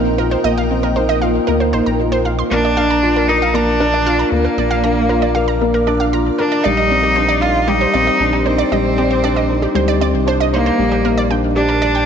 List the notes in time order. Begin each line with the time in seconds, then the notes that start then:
Already playing: A#1 A#3 C4 D#4 F4 A#4 D#5 G5
0.18 F4 A#4
0.31 C5
0.44 A#1 A#3 D#5
0.58 F5
0.70 C4
0.83 A#4
0.96 D#4 C5
1.09 D#5
1.22 F4 F5
1.47 D2 A#3 A#4
1.60 C5
1.73 A#1 D#4 C5
1.86 A#1 A#5
2.00 F4
2.12 C5
2.25 F4 F5
2.39 C6
2.50 A#1 A#3 D4 A#4
2.65 D5
2.76 D4 F5
2.90 A#5
3.03 F4
3.16 A#4
3.28 D#4 A#4 D5
3.42 F5
3.54 A#3 D4 A#5
3.80 D4 A#4
3.94 D5
4.06 F4 F5
4.19 A#5
4.32 D2 A#3 A#4
4.45 A#4
4.57 A#1 A#3 D5
4.71 F5
4.84 D4 A#5
5.09 F4 A#4
5.22 D5
5.35 A#4 F5
5.48 A#5
5.61 A#3
5.74 A#4
5.87 D4 D5
6.00 F5
6.13 F4 A#5
6.38 D4 A#4
6.52 D5
6.64 A#1 G3 D#4 D5
6.77 D#5
6.86 C5
6.91 C4
7.03 G4
7.16 D4 C5
7.29 D5
7.42 D#4 F4 D#5
7.68 G3 D#4 G4
7.81 C5
7.94 A#1 C4 D5
8.07 D#5
8.20 A#1 D4
8.33 G4
8.45 C4 D#4 C5
8.58 D5
8.72 A#1 G3 D#5
8.98 C4 G4
9.11 C5
9.24 D4 D5
9.36 D#5
9.49 D#4
9.62 G4
9.75 D2 G3 C5
9.88 D5
10.01 C4 D5
10.15 C2
10.27 D4 C5
10.40 D#5
10.52 A#3 D#4 C5
10.66 C5
10.79 A#1 G3
10.92 G4
10.98 A#5
11.05 A#3 A#4
11.18 D5
11.30 D4 G5
11.56 D4 G4
11.69 A#4
11.82 G4 D5
11.95 G5